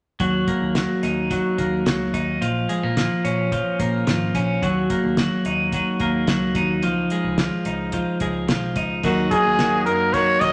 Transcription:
0.20 0.44 D#2 medium
0.20 0.74 F#3 medium
0.20 kick medium
0.20 closed hi-hat medium
0.48 1.58 A#3 soft
0.48 kick medium
0.48 closed hi-hat medium
0.61 0.85 D#2 medium
0.75 1.30 F#3 soft
0.75 snare medium
0.75 closed hi-hat medium
1.03 1.38 D#2 medium
1.03 2.13 D#4 medium
1.03 snare soft
1.03 closed hi-hat medium
1.31 1.85 F#3 medium
1.31 kick medium
1.31 closed hi-hat medium
1.58 1.82 D#2 medium
1.58 2.69 A#3 soft
1.58 kick medium
1.58 closed hi-hat medium
1.86 2.10 C#2 medium
1.86 2.41 F#3 soft
1.86 snare loud
1.86 closed hi-hat medium
2.14 2.37 D#2 medium
2.14 2.47 D#4 medium
2.14 kick medium
2.14 closed hi-hat medium
2.42 2.65 A#1 medium
2.42 2.96 F3 medium
2.42 closed hi-hat medium
2.69 2.83 G#3 medium
2.69 closed hi-hat medium
2.83 3.07 A#1 medium
2.83 3.79 A#3 soft
2.97 3.51 F3 soft
2.97 snare medium
2.97 closed hi-hat medium
3.24 3.60 A#1 medium
3.24 4.34 C#4 medium
3.24 closed hi-hat medium
3.52 4.06 F3 medium
3.52 kick medium
3.52 closed hi-hat medium
3.80 4.03 A#1 medium
3.80 4.90 A#3 medium
3.80 kick medium
3.80 closed hi-hat medium
4.07 4.31 G#1 medium
4.07 4.62 F3 medium
4.07 snare medium
4.07 closed hi-hat medium
4.35 4.58 A#1 medium
4.35 4.68 C#4 medium
4.35 kick medium
4.35 closed hi-hat medium
4.62 4.86 D#2 medium
4.62 5.17 F#3 medium
4.62 kick loud
4.62 closed hi-hat medium
4.90 6.00 A#3 soft
4.90 kick medium
4.90 closed hi-hat medium
5.04 5.27 D#2 medium
5.17 5.72 F#3 medium
5.17 snare medium
5.17 closed hi-hat medium
5.45 5.80 D#2 medium
5.45 6.56 D#4 medium
5.45 closed hi-hat medium
5.72 6.27 F#3 medium
5.72 kick medium
5.72 closed hi-hat medium
6.00 6.24 D#2 medium
6.00 6.89 A#3 medium
6.00 kick medium
6.00 closed hi-hat medium
6.27 6.51 C#2 medium
6.27 6.83 F#3 medium
6.27 snare loud
6.27 closed hi-hat medium
6.55 6.83 D#2 medium
6.55 7.42 D#4 medium
6.55 kick medium
6.55 closed hi-hat medium
6.83 7.07 C#2 medium
6.83 7.37 F3 medium
6.83 closed hi-hat medium
7.10 8.20 G#3 medium
7.10 closed hi-hat medium
7.24 7.48 C#2 medium
7.38 7.93 F3 medium
7.38 snare medium
7.38 closed hi-hat medium
7.65 8.01 C#2 medium
7.65 8.76 D#4 medium
7.65 closed hi-hat medium
7.92 8.47 F3 medium
7.92 kick medium
7.92 closed hi-hat medium
8.20 8.49 C#2 medium
8.20 9.09 G#3 medium
8.20 kick medium
8.20 closed hi-hat medium
8.48 8.72 B1 medium
8.48 9.04 F3 medium
8.48 snare loud
8.48 closed hi-hat medium
8.76 9.00 C#2 medium
8.76 9.05 D#4 medium
8.76 kick medium
8.76 closed hi-hat medium
9.03 9.27 D#2 medium
9.03 9.31 D#3 medium
9.03 9.58 F#3 medium
9.03 9.32 A#3 medium
9.03 9.31 D#4 medium
9.03 10.53 D#4 medium
9.03 9.30 F#4 medium
9.03 kick medium
9.03 closed hi-hat medium
9.31 9.86 A#3 soft
9.31 9.59 A#3 soft
9.31 9.59 D#4 soft
9.31 9.59 F#4 soft
9.31 9.83 G#4 medium
9.31 kick medium
9.31 closed hi-hat medium
9.45 9.87 D#2 medium
9.59 9.86 D#3 medium
9.59 10.14 F#3 medium
9.59 9.87 A#3 medium
9.59 9.86 D#4 medium
9.59 9.84 F#4 medium
9.59 snare loud
9.59 closed hi-hat medium
9.85 10.34 F#2 medium
9.85 10.42 A#3 medium
9.85 10.14 A#3 soft
9.85 10.14 D#4 soft
9.85 10.14 F#4 soft
9.85 10.15 A#4 medium
9.85 closed hi-hat medium
10.14 10.42 D#3 medium
10.14 10.53 F#3 medium
10.14 10.42 A#3 medium
10.14 10.42 D#4 medium
10.14 10.40 F#4 medium
10.14 10.42 C#5 medium
10.14 kick medium
10.14 closed hi-hat medium
10.40 10.53 D#2 medium
10.40 10.53 A#3 soft
10.40 10.53 D#4 soft
10.40 10.53 F#4 soft
10.40 10.53 D#5 loud
10.40 kick medium
10.40 closed hi-hat medium

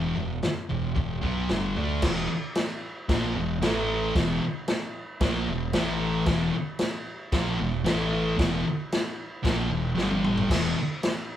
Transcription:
0.00 0.14 E1 medium
0.00 0.14 E2 loud
0.00 0.15 B2 medium
0.00 0.15 E3 loud
0.15 0.41 E1 medium
0.15 0.37 E2 medium
0.15 0.37 B2 medium
0.15 floor tom medium
0.43 muted distorted electric guitar stroke medium
0.43 snare loud
0.43 floor tom medium
0.69 0.94 E1 medium
0.69 0.90 E2 medium
0.69 0.91 B2 medium
0.69 floor tom medium
0.95 1.21 E1 medium
0.95 1.17 E2 medium
0.95 1.17 B2 medium
0.95 kick loud
0.95 floor tom medium
1.21 1.47 B1 medium
1.21 1.48 B2 medium
1.21 1.48 F#3 medium
1.21 1.49 B3 medium
1.21 kick medium
1.21 floor tom medium
1.49 1.74 G1 medium
1.49 1.75 G2 medium
1.49 1.75 D3 medium
1.49 1.76 G3 loud
1.49 snare loud
1.49 floor tom medium
1.76 2.01 D2 medium
1.76 2.02 D3 medium
1.76 2.02 A3 medium
1.76 2.02 D4 loud
1.76 floor tom medium
2.02 2.27 E1 loud
2.02 2.29 E2 medium
2.02 2.29 B2 loud
2.02 2.29 E3 loud
2.02 kick loud
2.02 snare loud
2.02 crash loud
2.02 crash medium
2.30 muted picked electric bass stroke soft
2.30 muted distorted electric guitar stroke medium
2.55 snare loud
2.55 crash medium
3.09 3.34 A#1 loud
3.09 3.35 A#2 medium
3.09 3.35 F3 loud
3.09 3.35 A#3 loud
3.09 kick loud
3.09 snare loud
3.09 crash medium
3.35 3.60 E1 medium
3.35 3.57 E2 medium
3.35 3.57 B2 medium
3.61 4.11 A1 loud
3.61 4.14 A2 loud
3.61 4.15 E3 loud
3.61 4.15 A3 loud
3.61 snare loud
3.61 crash medium
4.15 4.40 E1 loud
4.15 4.41 E2 loud
4.15 4.41 B2 loud
4.15 4.41 E3 loud
4.15 kick loud
4.15 snare loud
4.15 crash medium
4.42 muted picked electric bass stroke soft
4.42 muted distorted electric guitar stroke medium
4.68 snare loud
4.68 crash medium
5.21 5.45 A#1 loud
5.21 5.47 A#2 medium
5.21 5.47 F3 loud
5.21 5.47 A#3 loud
5.21 kick loud
5.21 snare loud
5.21 crash medium
5.48 5.72 E1 medium
5.48 5.69 E2 medium
5.48 5.69 B2 medium
5.73 6.24 A1 loud
5.73 6.26 A2 loud
5.73 6.26 E3 loud
5.73 6.27 A3 loud
5.73 snare loud
5.73 crash medium
6.26 6.51 E1 loud
6.26 6.51 E2 loud
6.26 6.52 B2 loud
6.26 6.53 E3 loud
6.26 kick loud
6.26 snare loud
6.26 crash medium
6.52 muted distorted electric guitar stroke medium
6.79 snare loud
6.79 crash medium
7.32 7.57 A#1 loud
7.32 7.58 A#2 loud
7.32 7.59 F3 loud
7.32 7.59 A#3 loud
7.32 kick loud
7.32 snare loud
7.32 crash medium
7.58 7.84 E1 medium
7.58 7.80 E2 medium
7.58 7.80 B2 medium
7.84 8.34 A1 loud
7.84 8.37 A2 loud
7.84 8.37 E3 loud
7.84 8.38 A3 loud
7.84 snare loud
7.84 crash medium
8.37 8.63 E1 loud
8.37 8.63 E2 medium
8.37 8.64 B2 loud
8.37 8.64 E3 loud
8.37 kick loud
8.37 snare loud
8.37 crash medium
8.65 muted distorted electric guitar stroke medium
8.65 muted picked electric bass stroke soft
8.92 snare loud
8.92 crash medium
9.43 9.69 A#1 loud
9.43 9.69 A#2 loud
9.43 9.69 F3 loud
9.43 9.70 A#3 loud
9.43 kick loud
9.43 snare loud
9.43 crash medium
9.70 9.95 E1 medium
9.70 9.91 E2 medium
9.70 9.92 B2 medium
9.95 10.46 G1 loud
9.95 10.48 G2 medium
9.95 10.48 D3 loud
9.95 10.48 G3 loud
9.95 snare medium
10.11 high tom medium
10.24 mid tom medium
10.37 floor tom loud
10.50 10.74 E1 loud
10.50 10.75 E2 medium
10.50 10.75 B2 loud
10.50 10.76 E3 loud
10.50 kick loud
10.50 snare loud
10.50 crash loud
10.50 crash medium
10.77 muted distorted electric guitar stroke medium
11.03 snare loud
11.03 crash medium

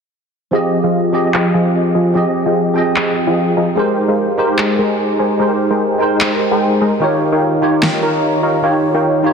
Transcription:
0.51 1.11 F3 medium
0.51 0.81 F3 medium
0.51 1.11 C4 medium
0.51 0.81 F4 medium
0.51 1.12 G4 medium
0.51 0.81 G#4 medium
0.51 1.12 G#4 medium
0.51 0.81 D#5 medium
0.51 1.12 D#5 medium
0.51 0.81 G5 loud
0.84 1.32 F3 medium
0.84 1.32 F4 medium
0.84 1.32 G#4 medium
0.84 1.32 D#5 medium
0.84 1.32 F5 medium
1.13 1.26 F3 medium
1.13 1.26 C4 medium
1.13 1.26 G4 medium
1.13 1.26 G#4 medium
1.13 1.27 D#5 medium
1.34 1.52 F3 medium
1.34 1.52 F4 medium
1.34 1.52 G#4 medium
1.34 1.52 D#5 medium
1.34 1.52 G5 medium
1.34 clap medium
1.54 1.93 F3 loud
1.54 1.93 F4 medium
1.54 1.93 G#4 medium
1.54 1.93 D#5 medium
1.54 1.93 G#5 loud
1.95 2.13 F3 medium
1.95 2.13 F4 medium
1.95 2.13 G#4 medium
1.95 2.13 D#5 medium
1.95 2.13 G#5 medium
2.13 2.73 F3 medium
2.13 2.25 F3 medium
2.13 2.73 C4 medium
2.13 2.25 F4 medium
2.13 2.74 G4 medium
2.13 2.25 G#4 medium
2.13 2.74 G#4 medium
2.13 2.26 D#5 medium
2.13 2.26 G5 loud
2.17 2.75 D#5 medium
2.46 3.25 F3 medium
2.46 3.25 F4 medium
2.46 3.25 G#4 medium
2.46 3.25 D#5 medium
2.46 3.25 G5 medium
2.74 3.74 F3 medium
2.74 3.74 C4 medium
2.74 3.75 G#4 medium
2.74 3.75 G5 medium
2.78 3.76 D#5 loud
2.96 clap medium
3.27 3.55 F3 loud
3.27 3.55 F4 medium
3.27 3.55 G#4 medium
3.27 3.55 D#5 medium
3.27 3.55 G5 loud
3.57 3.67 F3 medium
3.57 3.67 F4 medium
3.57 3.67 G#4 medium
3.57 3.67 D#5 medium
3.57 3.67 A#5 medium
3.75 4.35 G#3 medium
3.75 4.06 G#3 medium
3.75 4.35 D#4 medium
3.75 4.36 G4 medium
3.75 4.06 G#4 medium
3.75 4.06 A#4 medium
3.75 4.36 A#4 medium
3.75 4.06 C5 medium
3.75 4.37 C5 loud
3.75 4.06 G5 medium
4.08 4.56 G#3 medium
4.08 4.56 G#4 medium
4.08 4.56 A#4 medium
4.08 4.56 C5 medium
4.08 4.56 F5 medium
4.37 4.50 G#3 medium
4.37 4.50 D#4 medium
4.37 4.51 G4 medium
4.37 4.51 A#4 medium
4.37 4.51 C5 loud
4.58 4.77 G#3 medium
4.58 4.77 G#4 medium
4.58 4.77 A#4 medium
4.58 4.77 C5 medium
4.58 4.77 G5 medium
4.58 clap medium
4.79 5.17 G#3 medium
4.79 5.17 G#4 medium
4.79 5.17 A#4 medium
4.79 5.17 C5 medium
4.79 5.17 G#5 loud
5.19 5.37 G#3 medium
5.19 5.37 G#4 medium
5.19 5.37 A#4 medium
5.19 5.37 C5 medium
5.19 5.37 G#5 medium
5.38 5.97 G#3 medium
5.38 5.50 G#3 medium
5.38 5.98 D#4 medium
5.38 5.98 G4 medium
5.38 5.50 G#4 medium
5.38 5.50 A#4 medium
5.38 5.99 A#4 medium
5.38 5.50 C5 medium
5.38 5.99 C5 medium
5.38 5.50 G5 loud
5.70 6.49 G#3 medium
5.70 6.49 G#4 medium
5.70 6.49 A#4 medium
5.70 6.49 C5 medium
5.70 6.49 G5 medium
5.98 6.98 G#3 medium
5.98 6.99 D#4 medium
5.98 7.00 A#4 medium
5.98 6.99 G5 medium
6.02 7.00 C5 loud
6.21 clap medium
6.51 6.79 G#3 medium
6.51 6.79 G#4 medium
6.51 6.79 A#4 medium
6.51 6.79 C5 medium
6.51 6.79 G5 loud
6.81 6.92 G#3 medium
6.81 6.92 G#4 medium
6.81 6.92 A#4 medium
6.81 6.92 C5 medium
6.81 6.92 A#5 medium
6.99 7.59 D#3 medium
6.99 7.59 D#4 medium
6.99 7.30 D#4 medium
6.99 7.60 F4 medium
6.99 7.61 G4 medium
6.99 7.30 A#4 medium
6.99 7.30 C#5 medium
6.99 7.30 F5 medium
6.99 7.30 G5 medium
7.03 7.61 C#5 loud
7.32 7.80 D#4 medium
7.32 7.80 A#4 medium
7.32 7.80 C#5 medium
7.32 7.80 F5 medium
7.32 7.80 G5 medium
7.61 7.74 D#3 medium
7.61 7.75 D#4 medium
7.61 7.75 F4 medium
7.61 7.75 G4 medium
7.61 7.75 C#5 loud
7.82 8.01 D#4 medium
7.82 8.01 A#4 medium
7.82 8.01 C#5 medium
7.82 8.01 F5 medium
7.82 8.01 G5 medium
7.82 snare loud
7.82 clap medium
8.03 8.41 D#4 loud
8.03 8.41 A#4 medium
8.03 8.41 C#5 medium
8.03 8.41 F5 medium
8.03 8.41 A#5 loud
8.43 8.61 D#4 medium
8.43 8.61 A#4 medium
8.43 8.61 C#5 medium
8.43 8.61 F5 medium
8.43 8.61 A#5 medium
8.62 9.21 D#3 medium
8.62 9.22 D#4 medium
8.62 8.74 D#4 medium
8.62 9.22 F4 medium
8.62 9.23 G4 medium
8.62 8.74 A#4 medium
8.62 8.74 C#5 medium
8.62 8.74 F5 medium
8.62 8.74 G5 loud
8.66 9.23 C#5 medium
8.95 9.33 D#4 medium
8.95 9.33 A#4 medium
8.95 9.33 C#5 medium
8.95 9.33 F5 medium
8.95 9.33 G5 medium
9.22 9.33 D#3 medium
9.22 9.33 D#4 medium
9.22 9.33 F4 medium
9.22 9.33 G4 medium
9.22 9.33 C#5 loud

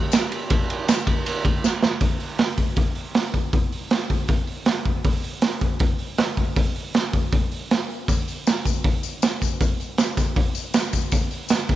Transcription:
0.12 snare loud
0.12 ride medium
0.12 tambourine loud
0.32 ride medium
0.50 kick loud
0.50 ride loud
0.70 ride medium
0.88 snare loud
0.88 ride medium
0.88 tambourine medium
1.07 kick medium
1.07 ride medium
1.26 ride medium
1.45 kick medium
1.45 ride medium
1.64 snare medium
1.64 tambourine medium
1.83 snare medium
2.00 kick loud
2.00 open hi-hat medium
2.20 open hi-hat soft
2.39 snare loud
2.39 open hi-hat medium
2.57 kick medium
2.57 open hi-hat medium
2.76 kick loud
2.76 open hi-hat medium
2.95 open hi-hat medium
3.15 snare loud
3.15 open hi-hat medium
3.34 kick medium
3.34 open hi-hat medium
3.53 kick loud
3.53 open hi-hat medium
3.72 open hi-hat medium
3.91 snare loud
3.91 open hi-hat medium
4.10 kick medium
4.10 open hi-hat medium
4.28 kick loud
4.28 open hi-hat medium
4.47 open hi-hat soft
4.66 snare loud
4.66 open hi-hat medium
4.85 kick medium
4.85 open hi-hat soft
5.04 kick loud
5.04 open hi-hat medium
5.24 open hi-hat medium
5.42 snare loud
5.42 open hi-hat medium
5.61 kick medium
5.61 open hi-hat medium
5.79 kick loud
5.79 open hi-hat medium
5.99 open hi-hat medium
6.18 snare loud
6.18 open hi-hat medium
6.37 kick medium
6.37 open hi-hat medium
6.56 kick loud
6.56 open hi-hat medium
6.76 open hi-hat medium
6.94 snare loud
6.94 open hi-hat medium
7.13 kick medium
7.13 open hi-hat medium
7.33 kick loud
7.33 open hi-hat medium
7.52 open hi-hat soft
7.71 snare loud
7.71 open hi-hat medium
7.90 open hi-hat soft
8.08 kick loud
8.08 open hi-hat medium
8.08 tambourine medium
8.28 open hi-hat soft
8.28 tambourine soft
8.47 snare loud
8.47 open hi-hat medium
8.47 tambourine loud
8.66 kick medium
8.66 open hi-hat medium
8.66 tambourine medium
8.84 kick loud
8.84 open hi-hat medium
9.03 open hi-hat medium
9.03 tambourine medium
9.22 snare loud
9.22 open hi-hat medium
9.22 tambourine loud
9.42 kick medium
9.42 open hi-hat medium
9.42 tambourine medium
9.61 kick loud
9.61 open hi-hat medium
9.61 tambourine medium
9.80 open hi-hat soft
9.80 tambourine soft
9.98 snare loud
9.98 open hi-hat medium
9.98 tambourine loud
10.17 kick medium
10.17 snare soft
10.17 open hi-hat medium
10.17 tambourine medium
10.36 kick loud
10.36 open hi-hat medium
10.55 open hi-hat medium
10.55 tambourine medium
10.74 snare loud
10.74 open hi-hat medium
10.74 tambourine loud
10.93 kick medium
10.93 open hi-hat medium
10.93 tambourine medium
11.11 kick loud
11.11 open hi-hat medium
11.11 tambourine medium
11.31 open hi-hat soft
11.31 tambourine soft
11.49 snare loud
11.49 open hi-hat medium
11.49 tambourine loud
11.69 kick medium
11.69 snare soft
11.69 open hi-hat medium

